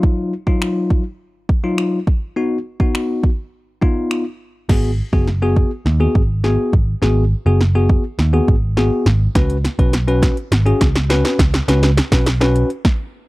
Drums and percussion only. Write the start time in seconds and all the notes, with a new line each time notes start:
0.03 kick
0.47 kick
0.62 finger snap
0.90 kick
1.49 kick
1.78 finger snap
2.07 kick
2.80 kick
2.95 finger snap
3.23 kick
3.82 kick
4.11 finger snap
4.69 kick, snare, crash
5.13 kick
5.28 snare
5.56 kick
5.86 snare
6.15 kick
6.44 snare
6.73 kick
7.02 snare
7.61 snare
7.89 kick
8.19 snare
8.48 kick
8.77 snare
9.06 snare
9.35 kick, snare, closed hi-hat
9.50 closed hi-hat
9.65 snare, closed hi-hat
9.79 kick, closed hi-hat
9.93 snare, closed hi-hat
10.08 closed hi-hat
10.22 kick, snare, closed hi-hat
10.37 closed hi-hat
10.52 snare, closed hi-hat
10.66 closed hi-hat
10.81 kick, snare, closed hi-hat
10.96 snare, closed hi-hat
11.10 snare, closed hi-hat
11.25 snare, closed hi-hat
11.39 kick, snare, closed hi-hat
11.54 snare, closed hi-hat
11.68 snare, closed hi-hat
11.83 snare, closed hi-hat
11.97 snare, closed hi-hat
12.12 kick, snare, closed hi-hat
12.26 snare, closed hi-hat
12.41 snare, closed hi-hat
12.56 closed hi-hat
12.70 closed hi-hat
12.85 kick, snare